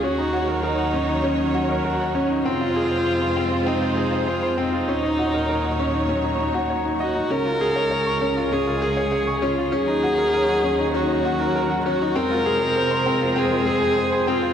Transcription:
X:1
M:4/4
L:1/16
Q:1/4=99
K:Ebdor
V:1 name="Viola"
G4 E4 D4 G2 D2 | F8 E4 F2 E2- | E12 z2 G2 | B8 A6 F2 |
A8 G6 G2 | B8 A6 F2 |]
V:2 name="Grand piano"
D E G B B g D E D E G B B g D E | C F A c c c' C F C F A c c c' C F | D E G B B g D E D E E G d E e E | D F A d d d' D F D F A d d d' D F |
D E G B B g D E D E G B B g D E | C F A c c c' C F C F A c c c' C F |]
V:3 name="String section" clef=bass
[E,,E,G,d]16 | [F,,C,A,Fc]16 | [E,,B,,G,d]16 | [D,,D,A,A]16 |
[E,,E,G,d]16 | [F,,C,A,c]16 |]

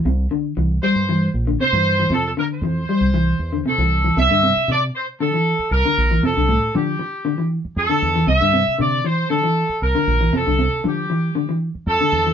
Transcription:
X:1
M:4/4
L:1/16
Q:1/4=117
K:Cmix
V:1 name="Horn section"
z6 c4 z2 c4 | A A B c8- c A4 | e4 d2 c2 A4 B4 | A4 G6 z2 A4 |
e4 d2 c2 A4 B4 | A4 G6 z2 A4 |]
V:2 name="Clean electric guitar" clef=bass
C,2 D,2 E,2 G,2 E,2 z D, C, E,2 E, | C,2 D,2 E,2 G,2 E,2 z D, C, E,2 E, | C, D, C,2 z4 D, E,2 z2 D,2 E, | C, D, A,,2 D,2 z2 D, E,2 z2 D,2 E, |
C, D, C,2 D,2 E,2 D, E,2 z2 D,2 E, | C, D, C,2 D,2 E,2 D, E,2 z2 D,2 E, |]
V:3 name="Fingered electric bass" clef=bass
C,,2 z2 C,,2 z G,,3 B,,,2 z G,,3 | F,,2 z2 F,,2 z C,,3 E,,2 z C,,3 | C,, G,,2 z C,2 z6 C,, z B,,,2 | F,, C,,2 z F,2 z6 F,, z E,,2 |
C,, G,,2 z C,2 z6 C,, z B,,,2 | F,, C,,2 z F,2 z6 F,, z E,,2 |]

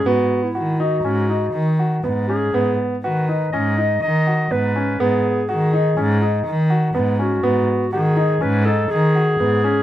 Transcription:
X:1
M:5/4
L:1/16
Q:1/4=122
K:G#m
V:1 name="Clarinet"
F3 E3 F8 z4 G2- | G2 z2 B4 d4 d4 B4 | G4 G8 z6 F2- | F4 G4 B2 =A2 G8 |]
V:2 name="Grand piano"
B,4 F2 D2 C2 D4 F2 B,2 C2 | B,4 F2 D2 C2 D4 F2 B,2 C2 | B,4 F2 D2 C2 D4 F2 B,2 C2 | B,4 F2 D2 C2 D4 F2 B,2 C2 |]
V:3 name="Cello" clef=bass
G,,2 z2 D,4 G,,4 D,4 G,,4 | G,,2 z2 D,4 G,,4 D,4 G,,4 | G,,2 z2 D,4 G,,4 D,4 G,,4 | G,,2 z2 D,4 G,,4 D,4 G,,4 |]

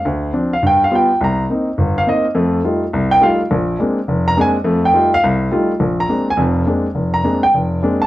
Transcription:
X:1
M:4/4
L:1/8
Q:"Swing" 1/4=208
K:Bbmix
V:1 name="Grand piano"
z3 f g f g2 | b2 z3 f e z | z4 z g f z | z4 z b a z |
z g2 f z4 | z b2 a z4 | z b2 g z3 =a |]
V:2 name="Grand piano"
D,,2 [F,CD] z G,,2 [G,=B,F] z | C,,2 [B,CE] z G,,,2 [B,CE] z | [F,,=A,]2 [G,A,EF] z C,,2 [G,A,EF] z | B,,,2 [A,B,CD] z F,,,2 [A,B,CD] z |
[F,,=A,]2 [G,A,EF] z C,,2 [G,A,EF] z | B,,,2 [A,B,CD] z [F,,,F,,]2 [A,B,CD] z | F,,,2 [A,B,CD] z F,,,2 [A,B,CD] z |]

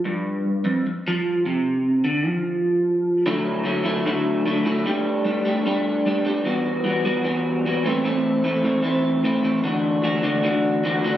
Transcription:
X:1
M:4/4
L:1/8
Q:1/4=150
K:Dmix
V:1 name="Clean electric guitar"
G,,3 =F,, G,, =F,2 C,- | C,2 D, =F,4- F, | [D,F,A,E]2 [D,F,A,E] [D,F,A,E] [D,F,A,E]2 [D,F,A,E] [D,F,A,E] | [G,A,DG]2 [G,A,DG] [G,A,DG] [G,A,DG]2 [G,A,DG] [G,A,DG] |
[E,G,B,F]2 [E,G,B,F] [E,G,B,F] [E,G,B,F]2 [E,G,B,F] [A,,E,A,CE] | [A,,E,A,CE]2 [A,,E,A,CE] [A,,E,A,CE] [A,,E,A,CE]2 [A,,E,A,CE] [A,,E,A,CE] | [D,E,A,DF]2 [D,E,A,DF] [D,E,A,DF] [D,E,A,DF]2 [D,E,A,DF] [D,E,A,DF] |]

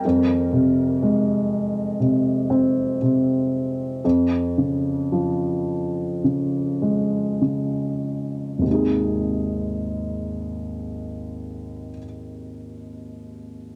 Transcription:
X:1
M:4/4
L:1/8
Q:1/4=52
K:Ab
V:1 name="Grand piano" clef=bass
F,, C, A,2 C, C C,2 | F,, D, F,2 D, A, D,2 | [A,,,E,,C,A,EA]8 |]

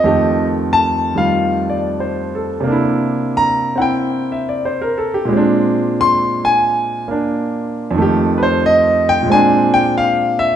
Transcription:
X:1
M:4/4
L:1/16
Q:"Swing" 1/4=91
K:Fmix
V:1 name="Grand piano"
e2 z2 a2 f4 d2 c2 A2- | A z3 b2 [_g=g]4 =e d c B A G | z4 c'2 _a4 z6 | z2 [=Bc]2 e2 g2 _a2 g2 f2 =e2 |]
V:2 name="Grand piano"
[F,,E,A,G]6 [E,G,F]8- [E,G,F]2 | [C,B,D=E]6 [CE]8- [CE]2 | [B,,_A,CD]8- [B,,A,CD]2 [B,D]6 | [F,,E,A,G]8 [B,,_A,CD]8 |]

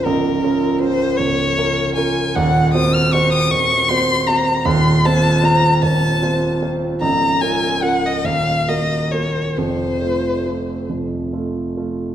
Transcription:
X:1
M:6/8
L:1/16
Q:3/8=51
K:Bbm
V:1 name="Violin"
B4 c2 d4 a2 | g2 e' f' d' e' d'2 c'2 b2 | c'2 =a2 b2 a4 z2 | b2 a2 g e f2 e2 d2 |
c6 z6 |]
V:2 name="Grand piano"
[D,,,D,,]2 [DFB]2 [DFB]2 [D,,,D,,]2 [DFB]2 [DFB]2 | [E,,,E,,]2 [CGc]2 [CGc]2 [E,,,E,,]2 [CGc]2 [CGc]2 | [E,,,E,,]2 [CFc]2 [CFc]2 [E,,,E,,]2 [CFc]2 [CFc]2 | [D,,,D,,]2 [DFB]2 [DFB]2 [E,,,E,,]2 [B,GB]2 [B,GB]2 |
[F,,,F,,]2 [=A,F]2 [A,F]2 [F,,,F,,]2 [A,F]2 [A,F]2 |]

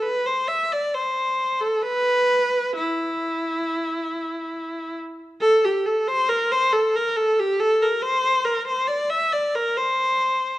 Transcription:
X:1
M:3/4
L:1/16
Q:1/4=68
K:Ephr
V:1 name="Viola"
B c e d c3 A B4 | E8- E2 z2 | [K:Cmix] A G A c B c A B A G A B | c2 B c d e d B c4 |]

